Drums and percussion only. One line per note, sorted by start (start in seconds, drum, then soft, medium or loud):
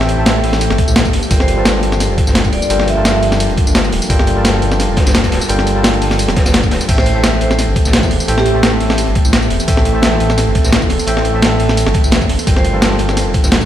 0.01 snare medium
0.01 snare soft
0.09 closed hi-hat medium
0.09 ride medium
0.26 snare loud
0.26 closed hi-hat medium
0.26 ride medium
0.26 tambourine soft
0.44 closed hi-hat medium
0.44 open hi-hat medium
0.44 ride medium
0.53 snare soft
0.53 tambourine soft
0.61 closed hi-hat medium
0.61 ride medium
0.61 tambourine soft
0.70 snare medium
0.70 closed hi-hat soft
0.78 kick loud
0.78 closed hi-hat medium
0.78 ride medium
0.88 tambourine medium
0.96 snare loud
0.96 closed hi-hat medium
0.96 closed hi-hat loud
0.96 ride medium
0.96 tambourine soft
1.05 kick medium
1.05 tambourine soft
1.13 closed hi-hat medium
1.13 open hi-hat medium
1.13 ride medium
1.23 tambourine medium
1.31 kick loud
1.31 closed hi-hat loud
1.31 closed hi-hat medium
1.31 ride medium
1.31 tambourine medium
1.40 snare soft
1.48 closed hi-hat medium
1.48 ride medium
1.65 snare loud
1.65 closed hi-hat medium
1.65 ride medium
1.65 tambourine medium
1.75 snare medium
1.83 closed hi-hat medium
1.83 ride medium
1.92 snare soft
1.92 tambourine soft
2.00 snare soft
2.00 closed hi-hat medium
2.00 closed hi-hat loud
2.00 ride medium
2.00 tambourine medium
2.18 kick loud
2.18 closed hi-hat medium
2.18 ride medium
2.27 snare medium
2.27 tambourine medium
2.35 snare loud
2.35 closed hi-hat medium
2.35 ride medium
2.35 tambourine medium
2.45 kick medium
2.45 tambourine soft
2.53 open hi-hat medium
2.53 ride medium
2.62 tambourine medium
2.70 closed hi-hat loud
2.70 ride medium
2.70 tambourine medium
2.80 snare soft
2.88 closed hi-hat medium
2.88 ride medium
3.05 snare loud
3.05 closed hi-hat medium
3.05 ride medium
3.05 tambourine medium
3.23 closed hi-hat medium
3.23 open hi-hat medium
3.23 ride medium
3.32 snare soft
3.32 tambourine soft
3.40 closed hi-hat medium
3.40 ride medium
3.40 tambourine medium
3.50 closed hi-hat soft
3.57 kick loud
3.57 closed hi-hat medium
3.57 ride medium
3.67 tambourine medium
3.75 snare loud
3.75 closed hi-hat medium
3.75 ride medium
3.75 tambourine medium
3.85 tambourine soft
3.92 closed hi-hat medium
3.92 open hi-hat medium
3.92 ride medium
4.02 closed hi-hat soft
4.02 tambourine medium
4.10 kick loud
4.10 closed hi-hat loud
4.10 closed hi-hat medium
4.10 ride medium
4.10 tambourine medium
4.19 snare soft
4.27 closed hi-hat medium
4.27 ride medium
4.44 snare loud
4.44 closed hi-hat medium
4.44 ride medium
4.44 tambourine medium
4.54 snare medium
4.62 closed hi-hat medium
4.62 ride medium
4.71 snare soft
4.71 tambourine soft
4.80 snare soft
4.80 closed hi-hat loud
4.80 closed hi-hat medium
4.80 ride medium
4.80 tambourine medium
4.97 kick loud
4.97 snare loud
4.97 closed hi-hat medium
4.97 ride medium
5.06 snare loud
5.06 closed hi-hat medium
5.06 tambourine medium
5.14 snare loud
5.14 closed hi-hat medium
5.14 closed hi-hat loud
5.14 ride medium
5.14 tambourine medium
5.23 kick medium
5.23 snare loud
5.23 closed hi-hat medium
5.23 tambourine soft
5.32 snare loud
5.32 closed hi-hat medium
5.32 open hi-hat medium
5.32 ride medium
5.41 snare soft
5.41 tambourine medium
5.49 closed hi-hat medium
5.49 closed hi-hat loud
5.49 ride medium
5.49 tambourine medium
5.59 snare soft
5.67 closed hi-hat medium
5.67 ride medium
5.67 tambourine soft
5.83 snare loud
5.83 closed hi-hat loud
5.83 closed hi-hat medium
5.83 ride medium
5.83 tambourine medium
5.94 closed hi-hat soft
6.01 closed hi-hat medium
6.01 open hi-hat medium
6.01 ride medium
6.01 tambourine soft
6.11 snare soft
6.11 tambourine soft
6.19 closed hi-hat loud
6.19 closed hi-hat medium
6.19 ride medium
6.19 tambourine medium
6.28 snare medium
6.28 closed hi-hat soft
6.36 kick loud
6.36 snare loud
6.36 closed hi-hat medium
6.36 ride medium
6.46 snare loud
6.46 closed hi-hat medium
6.46 tambourine medium
6.54 snare loud
6.54 closed hi-hat medium
6.54 closed hi-hat loud
6.54 ride medium
6.54 tambourine medium
6.63 kick medium
6.63 tambourine soft
6.71 snare loud
6.71 closed hi-hat medium
6.71 open hi-hat medium
6.71 ride medium
6.81 closed hi-hat soft
6.81 tambourine medium
6.89 kick loud
6.89 closed hi-hat loud
6.89 closed hi-hat medium
6.89 crash medium
6.89 ride medium
6.89 tambourine medium
6.98 snare medium
7.06 closed hi-hat medium
7.06 ride medium
7.24 snare loud
7.24 closed hi-hat medium
7.24 closed hi-hat loud
7.24 ride medium
7.24 tambourine soft
7.33 snare medium
7.41 closed hi-hat medium
7.41 ride medium
7.51 snare medium
7.51 tambourine soft
7.59 snare soft
7.59 closed hi-hat loud
7.59 closed hi-hat medium
7.59 ride medium
7.59 tambourine soft
7.76 kick loud
7.76 closed hi-hat medium
7.76 ride soft
7.85 snare medium
7.85 tambourine medium
7.93 snare loud
7.93 closed hi-hat loud
7.93 closed hi-hat medium
7.93 ride medium
7.93 tambourine soft
8.03 kick medium
8.03 tambourine soft
8.11 open hi-hat medium
8.11 ride medium
8.20 tambourine medium
8.28 closed hi-hat loud
8.28 closed hi-hat medium
8.28 ride medium
8.28 tambourine medium
8.38 snare soft
8.38 snare medium
8.46 closed hi-hat medium
8.46 ride medium
8.63 snare loud
8.63 closed hi-hat medium
8.63 ride medium
8.63 tambourine soft
8.80 closed hi-hat medium
8.80 open hi-hat medium
8.80 ride medium
8.90 snare soft
8.90 snare medium
8.90 tambourine soft
8.98 closed hi-hat medium
8.98 ride medium
8.98 tambourine soft
9.07 closed hi-hat soft
9.15 kick loud
9.15 closed hi-hat medium
9.15 ride medium
9.25 tambourine medium
9.33 snare loud
9.33 closed hi-hat medium
9.33 closed hi-hat loud
9.33 ride medium
9.33 tambourine soft
9.42 tambourine soft
9.50 closed hi-hat medium
9.50 open hi-hat medium
9.50 ride medium
9.60 closed hi-hat soft
9.60 tambourine medium
9.68 kick loud
9.68 closed hi-hat loud
9.68 ride medium
9.68 tambourine soft
9.77 snare soft
9.85 closed hi-hat medium
9.85 ride medium
10.02 snare loud
10.02 closed hi-hat medium
10.02 ride medium
10.02 tambourine soft
10.12 snare medium
10.20 closed hi-hat medium
10.20 ride medium
10.30 snare soft
10.30 tambourine soft
10.38 snare soft
10.38 closed hi-hat medium
10.38 ride medium
10.38 tambourine soft
10.55 kick loud
10.55 closed hi-hat medium
10.55 ride medium
10.64 snare medium
10.64 tambourine medium
10.72 snare loud
10.72 closed hi-hat medium
10.72 ride medium
10.72 tambourine soft
10.82 kick medium
10.82 tambourine soft
10.90 closed hi-hat medium
10.90 open hi-hat medium
10.90 ride medium
10.99 tambourine medium
11.07 closed hi-hat medium
11.07 ride medium
11.07 tambourine soft
11.17 snare soft
11.24 closed hi-hat medium
11.24 ride medium
11.42 snare loud
11.42 closed hi-hat medium
11.42 ride medium
11.42 tambourine soft
11.59 closed hi-hat medium
11.59 open hi-hat medium
11.59 ride medium
11.69 snare soft
11.69 tambourine soft
11.77 closed hi-hat medium
11.77 ride medium
11.77 tambourine soft
11.86 snare medium
11.86 closed hi-hat soft
11.94 kick loud
11.94 closed hi-hat medium
11.94 ride medium
12.04 tambourine medium
12.11 snare loud
12.11 closed hi-hat medium
12.11 ride medium
12.11 tambourine soft
12.21 kick medium
12.21 tambourine soft
12.29 closed hi-hat medium
12.29 open hi-hat medium
12.29 ride medium
12.39 tambourine medium
12.47 kick loud
12.47 closed hi-hat loud
12.47 closed hi-hat medium
12.47 ride medium
12.47 tambourine medium
12.56 snare soft
12.64 closed hi-hat medium
12.64 ride medium
12.82 snare loud
12.82 closed hi-hat medium
12.82 ride medium
12.82 tambourine soft
12.91 snare soft
12.99 closed hi-hat medium
12.99 ride medium
13.09 snare soft
13.09 tambourine soft
13.17 snare soft
13.17 closed hi-hat medium
13.17 ride medium
13.17 tambourine medium
13.34 kick loud
13.34 closed hi-hat medium
13.34 ride medium
13.44 snare soft
13.44 tambourine medium
13.52 snare loud
13.52 closed hi-hat medium
13.52 ride medium
13.52 tambourine medium
13.61 kick medium
13.61 tambourine soft